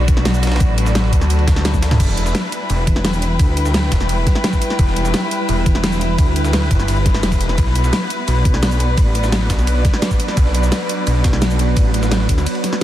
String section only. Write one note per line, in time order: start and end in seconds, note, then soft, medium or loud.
0.00 2.63 B3 medium
0.00 2.00 F#4 medium
0.00 12.83 B4 medium
0.00 3.33 D5 medium
2.00 8.42 E4 medium
2.52 7.58 G5 medium
7.58 12.83 B3 medium
7.71 12.83 F#4 medium
8.41 12.83 D5 medium